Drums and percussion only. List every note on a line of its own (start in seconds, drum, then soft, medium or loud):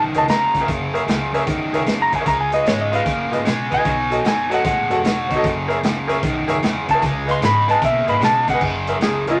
0.15 closed hi-hat medium
0.28 snare loud
0.28 closed hi-hat medium
0.55 kick medium
0.55 closed hi-hat medium
0.68 kick loud
0.68 closed hi-hat medium
0.95 closed hi-hat medium
1.08 snare loud
1.08 closed hi-hat medium
1.34 closed hi-hat medium
1.47 kick loud
1.47 snare soft
1.47 closed hi-hat medium
1.74 closed hi-hat medium
1.87 snare loud
1.87 closed hi-hat medium
2.12 kick medium
2.12 closed hi-hat medium
2.26 kick loud
2.26 closed hi-hat medium
2.52 closed hi-hat medium
2.66 snare loud
2.66 closed hi-hat medium
2.93 closed hi-hat medium
3.06 kick loud
3.06 closed hi-hat medium
3.33 closed hi-hat medium
3.46 snare loud
3.46 closed hi-hat medium
3.72 kick medium
3.72 closed hi-hat medium
3.85 kick loud
3.85 closed hi-hat medium
4.12 closed hi-hat medium
4.25 snare loud
4.25 closed hi-hat medium
4.52 snare soft
4.52 closed hi-hat medium
4.65 kick loud
4.65 closed hi-hat medium
4.91 closed hi-hat medium
5.05 snare loud
5.05 closed hi-hat medium
5.31 kick medium
5.31 closed hi-hat medium
5.44 kick loud
5.44 closed hi-hat medium
5.70 closed hi-hat medium
5.83 snare loud
5.83 closed hi-hat medium
6.09 closed hi-hat medium
6.23 kick loud
6.23 snare soft
6.23 closed hi-hat medium
6.49 closed hi-hat medium
6.63 snare loud
6.63 closed hi-hat medium
6.89 kick medium
6.89 closed hi-hat medium
7.02 kick loud
7.02 closed hi-hat medium
7.29 snare soft
7.29 closed hi-hat medium
7.42 snare loud
7.42 closed hi-hat medium
7.69 closed hi-hat medium
7.82 kick loud
7.82 snare soft
7.82 closed hi-hat medium
8.08 closed hi-hat medium
8.22 snare loud
8.22 closed hi-hat medium
8.48 kick medium
8.48 snare soft
8.48 closed hi-hat medium
8.61 kick loud
8.61 crash medium
8.87 closed hi-hat medium
9.01 snare loud
9.01 closed hi-hat medium
9.27 closed hi-hat medium